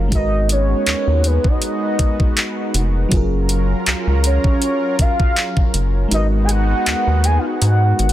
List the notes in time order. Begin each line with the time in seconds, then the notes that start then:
Already playing: F#1 F#3 C#4 G#4 A#4 F5
0.08 G#1 G#3 B3 D#4 F#4, kick, closed hi-hat
0.13 F#4 A#4 D#5
0.17 B4
0.49 C#5, closed hi-hat
0.86 D#2, clap, closed hi-hat
1.07 D#2
1.24 B4, closed hi-hat
1.44 D#5, kick
1.62 closed hi-hat
1.99 kick, closed hi-hat
2.20 kick
2.37 clap, closed hi-hat
2.74 F1, closed hi-hat
3.09 F#1 F#3 C#4 F4 A#4, kick, closed hi-hat
3.13 F4 G#4
3.17 A#4
3.49 closed hi-hat
3.86 C#2, clap, closed hi-hat
4.07 C#2
4.24 C#5, closed hi-hat
4.44 kick
4.62 closed hi-hat
4.99 F5, kick, closed hi-hat
5.20 kick
5.37 clap, closed hi-hat
5.57 kick
5.74 F#1, closed hi-hat
6.08 G#1 G#3 B3 D#4 F#4, closed hi-hat
6.13 F#4 A#4 D#5
6.17 B4
6.44 G#5
6.49 F#5, closed hi-hat
6.86 D#2, clap, closed hi-hat
7.07 D#2
7.24 G#5, closed hi-hat
7.39 F5
7.46 F#5
7.62 G#2, closed hi-hat
7.99 G#1, closed hi-hat
8.09 closed hi-hat